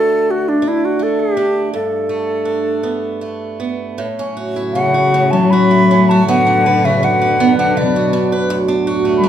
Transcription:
Already playing: D2 A3 D4 A4
0.31 F#4
0.49 D4
0.62 D4
0.68 E4
0.85 F#4
0.99 A3 A4
1.20 G4
1.37 D4
1.74 G2 A4
2.09 A3
2.45 D4
2.83 B3
3.21 A3
3.60 B3
3.98 A2 F#3 C#4
4.19 C#4
4.37 F#4
4.56 E4
4.74 C#3 C#4 F#5
4.94 F#4
5.14 A2
5.31 F#3 C#4 A5
5.51 F#3 F#4 B5
5.71 E4
5.91 C#4
6.08 F#3 F#4 A5
6.26 B2 D3 B3 D4 F#5
6.47 D4
6.66 B4
6.84 C#3 F#4 E5
7.03 D3 D4 F#5
7.21 B4
7.40 B3
7.58 D3 D4 F#5
7.77 B4 D5
7.81 B2
7.96 F#4
8.13 D4
8.32 B4
8.48 D2 A2
8.68 D4
8.87 F#4
9.05 A3
9.18 G3 B5
9.23 D4

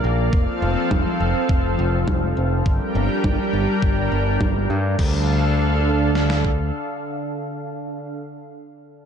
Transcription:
Already playing: A#3 A#4 D5 F5
0.04 A#1
0.33 F1 F3 C4 A4 F5, kick
0.62 F1
0.91 F1, kick, snare
1.20 F1
1.49 F1, kick
1.79 F1
2.08 F1, kick, snare
2.37 F1
2.66 G1 G3 D4 A#4 G5, kick
2.95 G1
3.24 G1, kick, snare
3.39 snare
3.53 G1
3.82 G1, kick
4.12 G1
4.41 kick, snare
4.70 G2
4.99 D2 D3 D4 A4 F5, kick, crash
6.15 snare
6.30 snare
6.44 kick

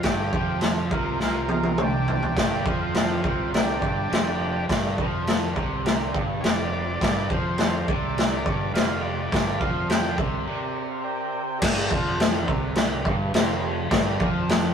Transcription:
0.03 G1 G2 G4, kick, snare, crash
0.33 F2 F3, kick
0.61 snare, crash
0.87 A4
0.91 C2 C3 F4 A#4, kick
1.20 C2 C3 F4 A#4, snare
1.49 F4 A#4, high tom
1.63 high tom
1.78 mid tom
1.82 D4 G4
2.08 D4 G4, floor tom
2.23 floor tom
2.35 G1 G2 D4 G4 A#4 D5, kick, snare, crash
2.65 F2 F3 C4 F4, kick
2.95 C4 F4 G4 A#4 D5, snare, crash
3.23 C2 C3 C4 F4, kick
3.54 D4 G4 A#4 D5, snare, crash
3.81 G1 G2, kick
4.09 F1 F2, crash
4.13 G4 A#4 D5, snare
4.69 G1 G2 G4 A#4 D5, kick, snare, crash
4.98 F2 F3, kick
5.27 G4 A#4 D5, snare, crash
5.56 C2 C3, kick
5.85 G4 A#4 D5, snare, crash
6.13 G1 G2, kick
6.41 F1 F2 G4 A#4 C5 C#5, snare, crash
6.45 D5
7.00 G1 G2 G4 A#4 D5, kick, snare, crash
7.29 F2 F3 C5, kick
7.57 G4 A#4 D5, snare, crash
7.88 C2 C3 D5, kick
8.18 G4 A#4 D5, snare, crash
8.46 G1 G2, kick
8.72 F1 F2 G4 A#4 D5 F5, crash
8.76 snare
9.02 D5
9.32 G1 G2 G4 A#4 D5, kick, snare, crash
9.59 F2 F3 F5, kick
9.89 G4 A#4 D5 G5, snare, crash
10.18 C2 C3, kick
10.47 C3 G4 A#4 D5
10.76 D5
10.91 F5
11.03 G4 A#4 D5 G5
11.59 G1 G4 A#4 D5, kick, crash
11.63 G2, snare
11.90 F2 F3, kick
12.20 G4 A#4 D5, snare, crash
12.48 C2 C3, kick
12.76 G4 A#4 D5, snare, crash
13.05 G1 G2, kick
13.34 F1 F2, snare, crash
13.38 G4 A#4 C5
13.91 G1 G2 G4 A#4 D5, kick, snare, crash
14.20 F2 F3, kick
14.48 G4 A#4 D5, snare, crash

